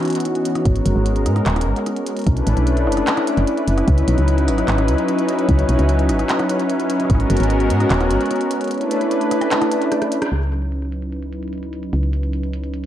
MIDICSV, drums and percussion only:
0, 0, Header, 1, 2, 480
1, 0, Start_track
1, 0, Tempo, 402685
1, 782, Time_signature, 4, 2, 24, 8
1, 15330, End_track
2, 0, Start_track
2, 0, Title_t, "Drums"
2, 1, Note_on_c, 9, 42, 23
2, 31, Note_off_c, 9, 42, 0
2, 31, Note_on_c, 9, 42, 25
2, 61, Note_off_c, 9, 42, 0
2, 61, Note_on_c, 9, 42, 41
2, 91, Note_off_c, 9, 42, 0
2, 91, Note_on_c, 9, 42, 31
2, 121, Note_off_c, 9, 42, 0
2, 121, Note_on_c, 9, 42, 55
2, 151, Note_off_c, 9, 42, 0
2, 151, Note_on_c, 9, 42, 36
2, 181, Note_off_c, 9, 42, 0
2, 181, Note_on_c, 9, 42, 68
2, 241, Note_off_c, 9, 42, 0
2, 241, Note_on_c, 9, 42, 76
2, 301, Note_off_c, 9, 42, 0
2, 301, Note_on_c, 9, 42, 65
2, 420, Note_off_c, 9, 42, 0
2, 421, Note_on_c, 9, 42, 40
2, 540, Note_off_c, 9, 42, 0
2, 541, Note_on_c, 9, 42, 88
2, 660, Note_off_c, 9, 42, 0
2, 660, Note_on_c, 9, 37, 61
2, 660, Note_on_c, 9, 42, 42
2, 779, Note_off_c, 9, 37, 0
2, 779, Note_off_c, 9, 42, 0
2, 781, Note_on_c, 9, 42, 62
2, 782, Note_on_c, 9, 36, 104
2, 900, Note_off_c, 9, 42, 0
2, 901, Note_off_c, 9, 36, 0
2, 901, Note_on_c, 9, 42, 36
2, 1020, Note_off_c, 9, 42, 0
2, 1020, Note_on_c, 9, 42, 89
2, 1140, Note_off_c, 9, 42, 0
2, 1261, Note_on_c, 9, 42, 62
2, 1380, Note_off_c, 9, 42, 0
2, 1381, Note_on_c, 9, 42, 37
2, 1500, Note_off_c, 9, 42, 0
2, 1501, Note_on_c, 9, 37, 46
2, 1501, Note_on_c, 9, 42, 93
2, 1620, Note_off_c, 9, 37, 0
2, 1620, Note_off_c, 9, 42, 0
2, 1621, Note_on_c, 9, 37, 50
2, 1621, Note_on_c, 9, 42, 39
2, 1740, Note_off_c, 9, 37, 0
2, 1740, Note_off_c, 9, 42, 0
2, 1741, Note_on_c, 9, 39, 115
2, 1741, Note_on_c, 9, 42, 62
2, 1861, Note_off_c, 9, 39, 0
2, 1861, Note_off_c, 9, 42, 0
2, 1862, Note_on_c, 9, 37, 70
2, 1862, Note_on_c, 9, 42, 40
2, 1922, Note_off_c, 9, 42, 0
2, 1922, Note_on_c, 9, 42, 91
2, 1981, Note_off_c, 9, 37, 0
2, 2041, Note_off_c, 9, 42, 0
2, 2103, Note_on_c, 9, 42, 40
2, 2222, Note_off_c, 9, 42, 0
2, 2222, Note_on_c, 9, 37, 34
2, 2222, Note_on_c, 9, 42, 63
2, 2341, Note_off_c, 9, 37, 0
2, 2341, Note_off_c, 9, 42, 0
2, 2342, Note_on_c, 9, 42, 41
2, 2461, Note_off_c, 9, 42, 0
2, 2462, Note_on_c, 9, 42, 90
2, 2581, Note_off_c, 9, 42, 0
2, 2582, Note_on_c, 9, 42, 39
2, 2612, Note_off_c, 9, 42, 0
2, 2612, Note_on_c, 9, 42, 33
2, 2642, Note_off_c, 9, 42, 0
2, 2642, Note_on_c, 9, 42, 26
2, 2672, Note_off_c, 9, 42, 0
2, 2672, Note_on_c, 9, 42, 21
2, 2701, Note_off_c, 9, 42, 0
2, 2701, Note_on_c, 9, 42, 61
2, 2702, Note_on_c, 9, 36, 105
2, 2821, Note_off_c, 9, 36, 0
2, 2821, Note_off_c, 9, 42, 0
2, 2822, Note_on_c, 9, 42, 34
2, 2941, Note_off_c, 9, 42, 0
2, 2941, Note_on_c, 9, 42, 85
2, 3060, Note_off_c, 9, 42, 0
2, 3062, Note_on_c, 9, 42, 37
2, 3181, Note_off_c, 9, 42, 0
2, 3181, Note_on_c, 9, 42, 61
2, 3300, Note_off_c, 9, 42, 0
2, 3301, Note_on_c, 9, 42, 37
2, 3421, Note_off_c, 9, 42, 0
2, 3422, Note_on_c, 9, 37, 47
2, 3482, Note_on_c, 9, 42, 87
2, 3541, Note_off_c, 9, 37, 0
2, 3541, Note_off_c, 9, 42, 0
2, 3541, Note_on_c, 9, 37, 45
2, 3541, Note_on_c, 9, 42, 36
2, 3661, Note_off_c, 9, 37, 0
2, 3661, Note_off_c, 9, 42, 0
2, 3662, Note_on_c, 9, 39, 116
2, 3662, Note_on_c, 9, 42, 61
2, 3781, Note_off_c, 9, 39, 0
2, 3781, Note_off_c, 9, 42, 0
2, 3782, Note_on_c, 9, 37, 72
2, 3782, Note_on_c, 9, 42, 37
2, 3901, Note_off_c, 9, 37, 0
2, 3901, Note_off_c, 9, 42, 0
2, 3902, Note_on_c, 9, 42, 86
2, 4021, Note_off_c, 9, 42, 0
2, 4022, Note_on_c, 9, 42, 38
2, 4141, Note_off_c, 9, 42, 0
2, 4141, Note_on_c, 9, 42, 61
2, 4261, Note_off_c, 9, 42, 0
2, 4262, Note_on_c, 9, 42, 36
2, 4381, Note_off_c, 9, 42, 0
2, 4382, Note_on_c, 9, 42, 86
2, 4501, Note_off_c, 9, 42, 0
2, 4501, Note_on_c, 9, 37, 61
2, 4501, Note_on_c, 9, 42, 39
2, 4621, Note_off_c, 9, 37, 0
2, 4621, Note_off_c, 9, 42, 0
2, 4621, Note_on_c, 9, 42, 58
2, 4622, Note_on_c, 9, 36, 101
2, 4740, Note_off_c, 9, 42, 0
2, 4741, Note_off_c, 9, 36, 0
2, 4741, Note_on_c, 9, 42, 35
2, 4861, Note_off_c, 9, 42, 0
2, 4861, Note_on_c, 9, 42, 81
2, 4980, Note_off_c, 9, 42, 0
2, 4981, Note_on_c, 9, 42, 35
2, 5100, Note_off_c, 9, 42, 0
2, 5101, Note_on_c, 9, 42, 61
2, 5220, Note_off_c, 9, 42, 0
2, 5221, Note_on_c, 9, 42, 35
2, 5340, Note_off_c, 9, 42, 0
2, 5341, Note_on_c, 9, 37, 49
2, 5341, Note_on_c, 9, 42, 85
2, 5460, Note_off_c, 9, 37, 0
2, 5460, Note_off_c, 9, 42, 0
2, 5461, Note_on_c, 9, 37, 47
2, 5461, Note_on_c, 9, 42, 37
2, 5580, Note_off_c, 9, 37, 0
2, 5580, Note_off_c, 9, 42, 0
2, 5581, Note_on_c, 9, 39, 107
2, 5581, Note_on_c, 9, 42, 56
2, 5700, Note_off_c, 9, 39, 0
2, 5700, Note_off_c, 9, 42, 0
2, 5700, Note_on_c, 9, 37, 71
2, 5700, Note_on_c, 9, 42, 38
2, 5820, Note_off_c, 9, 37, 0
2, 5820, Note_off_c, 9, 42, 0
2, 5821, Note_on_c, 9, 42, 84
2, 5940, Note_off_c, 9, 42, 0
2, 5941, Note_on_c, 9, 42, 36
2, 6060, Note_off_c, 9, 42, 0
2, 6061, Note_on_c, 9, 37, 32
2, 6061, Note_on_c, 9, 42, 61
2, 6180, Note_off_c, 9, 37, 0
2, 6180, Note_off_c, 9, 42, 0
2, 6181, Note_on_c, 9, 42, 39
2, 6300, Note_off_c, 9, 42, 0
2, 6301, Note_on_c, 9, 42, 78
2, 6420, Note_off_c, 9, 42, 0
2, 6421, Note_on_c, 9, 42, 39
2, 6540, Note_off_c, 9, 42, 0
2, 6540, Note_on_c, 9, 42, 61
2, 6542, Note_on_c, 9, 36, 100
2, 6660, Note_off_c, 9, 42, 0
2, 6661, Note_off_c, 9, 36, 0
2, 6661, Note_on_c, 9, 42, 35
2, 6780, Note_off_c, 9, 42, 0
2, 6781, Note_on_c, 9, 42, 85
2, 6900, Note_off_c, 9, 42, 0
2, 6901, Note_on_c, 9, 42, 38
2, 7020, Note_off_c, 9, 42, 0
2, 7021, Note_on_c, 9, 42, 60
2, 7140, Note_off_c, 9, 42, 0
2, 7141, Note_on_c, 9, 42, 35
2, 7261, Note_off_c, 9, 42, 0
2, 7261, Note_on_c, 9, 37, 49
2, 7261, Note_on_c, 9, 42, 85
2, 7380, Note_off_c, 9, 37, 0
2, 7380, Note_off_c, 9, 42, 0
2, 7381, Note_on_c, 9, 37, 52
2, 7381, Note_on_c, 9, 42, 37
2, 7501, Note_off_c, 9, 37, 0
2, 7501, Note_off_c, 9, 42, 0
2, 7502, Note_on_c, 9, 39, 103
2, 7502, Note_on_c, 9, 42, 59
2, 7621, Note_off_c, 9, 39, 0
2, 7621, Note_off_c, 9, 42, 0
2, 7622, Note_on_c, 9, 37, 72
2, 7622, Note_on_c, 9, 42, 34
2, 7741, Note_off_c, 9, 37, 0
2, 7741, Note_off_c, 9, 42, 0
2, 7742, Note_on_c, 9, 42, 84
2, 7861, Note_off_c, 9, 42, 0
2, 7862, Note_on_c, 9, 42, 36
2, 7981, Note_off_c, 9, 42, 0
2, 7982, Note_on_c, 9, 42, 59
2, 8101, Note_off_c, 9, 42, 0
2, 8101, Note_on_c, 9, 42, 37
2, 8221, Note_off_c, 9, 42, 0
2, 8221, Note_on_c, 9, 42, 84
2, 8340, Note_off_c, 9, 42, 0
2, 8341, Note_on_c, 9, 37, 29
2, 8341, Note_on_c, 9, 42, 37
2, 8401, Note_off_c, 9, 37, 0
2, 8401, Note_on_c, 9, 37, 35
2, 8460, Note_off_c, 9, 42, 0
2, 8461, Note_off_c, 9, 37, 0
2, 8461, Note_on_c, 9, 37, 40
2, 8461, Note_on_c, 9, 42, 59
2, 8462, Note_on_c, 9, 36, 96
2, 8521, Note_off_c, 9, 37, 0
2, 8521, Note_on_c, 9, 37, 46
2, 8580, Note_off_c, 9, 42, 0
2, 8581, Note_off_c, 9, 36, 0
2, 8581, Note_on_c, 9, 42, 36
2, 8640, Note_off_c, 9, 37, 0
2, 8701, Note_off_c, 9, 42, 0
2, 8701, Note_on_c, 9, 42, 82
2, 8781, Note_off_c, 9, 42, 0
2, 8781, Note_on_c, 9, 42, 67
2, 8821, Note_off_c, 9, 42, 0
2, 8821, Note_on_c, 9, 42, 39
2, 8861, Note_off_c, 9, 42, 0
2, 8861, Note_on_c, 9, 42, 55
2, 8941, Note_off_c, 9, 42, 0
2, 8941, Note_on_c, 9, 42, 59
2, 9061, Note_off_c, 9, 42, 0
2, 9062, Note_on_c, 9, 42, 36
2, 9181, Note_off_c, 9, 42, 0
2, 9181, Note_on_c, 9, 42, 87
2, 9301, Note_off_c, 9, 42, 0
2, 9302, Note_on_c, 9, 37, 51
2, 9302, Note_on_c, 9, 42, 35
2, 9421, Note_off_c, 9, 37, 0
2, 9421, Note_off_c, 9, 42, 0
2, 9422, Note_on_c, 9, 39, 108
2, 9422, Note_on_c, 9, 42, 58
2, 9541, Note_off_c, 9, 39, 0
2, 9541, Note_off_c, 9, 42, 0
2, 9542, Note_on_c, 9, 37, 81
2, 9542, Note_on_c, 9, 42, 36
2, 9662, Note_off_c, 9, 37, 0
2, 9662, Note_off_c, 9, 42, 0
2, 9662, Note_on_c, 9, 42, 86
2, 9781, Note_off_c, 9, 42, 0
2, 9782, Note_on_c, 9, 42, 37
2, 9842, Note_off_c, 9, 42, 0
2, 9842, Note_on_c, 9, 42, 31
2, 9902, Note_off_c, 9, 42, 0
2, 9902, Note_on_c, 9, 37, 36
2, 9902, Note_on_c, 9, 42, 60
2, 9962, Note_off_c, 9, 42, 0
2, 9962, Note_on_c, 9, 42, 19
2, 10021, Note_off_c, 9, 37, 0
2, 10022, Note_off_c, 9, 42, 0
2, 10022, Note_on_c, 9, 42, 39
2, 10141, Note_off_c, 9, 42, 0
2, 10141, Note_on_c, 9, 42, 87
2, 10261, Note_off_c, 9, 42, 0
2, 10262, Note_on_c, 9, 42, 39
2, 10302, Note_off_c, 9, 42, 0
2, 10302, Note_on_c, 9, 42, 31
2, 10342, Note_off_c, 9, 42, 0
2, 10342, Note_on_c, 9, 42, 26
2, 10382, Note_off_c, 9, 42, 0
2, 10382, Note_on_c, 9, 42, 62
2, 10422, Note_off_c, 9, 42, 0
2, 10422, Note_on_c, 9, 42, 15
2, 10461, Note_off_c, 9, 42, 0
2, 10461, Note_on_c, 9, 42, 12
2, 10502, Note_off_c, 9, 42, 0
2, 10502, Note_on_c, 9, 42, 39
2, 10621, Note_off_c, 9, 42, 0
2, 10621, Note_on_c, 9, 42, 90
2, 10741, Note_off_c, 9, 42, 0
2, 10741, Note_on_c, 9, 42, 38
2, 10860, Note_off_c, 9, 42, 0
2, 10861, Note_on_c, 9, 42, 65
2, 10980, Note_off_c, 9, 42, 0
2, 10981, Note_on_c, 9, 42, 38
2, 11100, Note_off_c, 9, 42, 0
2, 11101, Note_on_c, 9, 37, 52
2, 11101, Note_on_c, 9, 42, 90
2, 11221, Note_off_c, 9, 37, 0
2, 11221, Note_off_c, 9, 42, 0
2, 11222, Note_on_c, 9, 37, 51
2, 11222, Note_on_c, 9, 42, 38
2, 11341, Note_off_c, 9, 37, 0
2, 11341, Note_off_c, 9, 42, 0
2, 11341, Note_on_c, 9, 39, 105
2, 11341, Note_on_c, 9, 42, 64
2, 11460, Note_off_c, 9, 39, 0
2, 11460, Note_off_c, 9, 42, 0
2, 11462, Note_on_c, 9, 37, 81
2, 11462, Note_on_c, 9, 42, 40
2, 11581, Note_off_c, 9, 37, 0
2, 11581, Note_off_c, 9, 42, 0
2, 11581, Note_on_c, 9, 42, 91
2, 11700, Note_off_c, 9, 42, 0
2, 11701, Note_on_c, 9, 42, 39
2, 11820, Note_off_c, 9, 42, 0
2, 11821, Note_on_c, 9, 37, 57
2, 11821, Note_on_c, 9, 42, 63
2, 11940, Note_off_c, 9, 37, 0
2, 11940, Note_off_c, 9, 42, 0
2, 11941, Note_on_c, 9, 37, 62
2, 11941, Note_on_c, 9, 42, 40
2, 12060, Note_off_c, 9, 37, 0
2, 12060, Note_off_c, 9, 42, 0
2, 12061, Note_on_c, 9, 42, 86
2, 12180, Note_off_c, 9, 42, 0
2, 12180, Note_on_c, 9, 37, 85
2, 12180, Note_on_c, 9, 42, 40
2, 12300, Note_off_c, 9, 37, 0
2, 12300, Note_off_c, 9, 42, 0
2, 12541, Note_on_c, 9, 42, 83
2, 12660, Note_off_c, 9, 42, 0
2, 12660, Note_on_c, 9, 42, 38
2, 12779, Note_off_c, 9, 42, 0
2, 12780, Note_on_c, 9, 42, 60
2, 12899, Note_off_c, 9, 42, 0
2, 12900, Note_on_c, 9, 42, 36
2, 13019, Note_off_c, 9, 42, 0
2, 13021, Note_on_c, 9, 42, 82
2, 13140, Note_off_c, 9, 42, 0
2, 13140, Note_on_c, 9, 42, 36
2, 13259, Note_off_c, 9, 42, 0
2, 13260, Note_on_c, 9, 42, 59
2, 13380, Note_off_c, 9, 42, 0
2, 13381, Note_on_c, 9, 42, 36
2, 13500, Note_off_c, 9, 42, 0
2, 13501, Note_on_c, 9, 42, 82
2, 13620, Note_off_c, 9, 42, 0
2, 13621, Note_on_c, 9, 42, 36
2, 13681, Note_off_c, 9, 42, 0
2, 13681, Note_on_c, 9, 42, 28
2, 13741, Note_off_c, 9, 42, 0
2, 13741, Note_on_c, 9, 42, 59
2, 13801, Note_off_c, 9, 42, 0
2, 13801, Note_on_c, 9, 42, 19
2, 13861, Note_off_c, 9, 42, 0
2, 13861, Note_on_c, 9, 42, 39
2, 13980, Note_off_c, 9, 42, 0
2, 13981, Note_on_c, 9, 42, 82
2, 14100, Note_off_c, 9, 42, 0
2, 14101, Note_on_c, 9, 42, 39
2, 14220, Note_off_c, 9, 42, 0
2, 14221, Note_on_c, 9, 42, 60
2, 14340, Note_off_c, 9, 42, 0
2, 14341, Note_on_c, 9, 42, 33
2, 14461, Note_off_c, 9, 42, 0
2, 14461, Note_on_c, 9, 42, 85
2, 14581, Note_off_c, 9, 42, 0
2, 14581, Note_on_c, 9, 42, 37
2, 14701, Note_off_c, 9, 42, 0
2, 14701, Note_on_c, 9, 42, 56
2, 14821, Note_off_c, 9, 42, 0
2, 14822, Note_on_c, 9, 42, 36
2, 14941, Note_off_c, 9, 42, 0
2, 14941, Note_on_c, 9, 42, 82
2, 15061, Note_off_c, 9, 42, 0
2, 15062, Note_on_c, 9, 42, 36
2, 15181, Note_off_c, 9, 42, 0
2, 15182, Note_on_c, 9, 42, 58
2, 15301, Note_off_c, 9, 42, 0
2, 15330, End_track
0, 0, End_of_file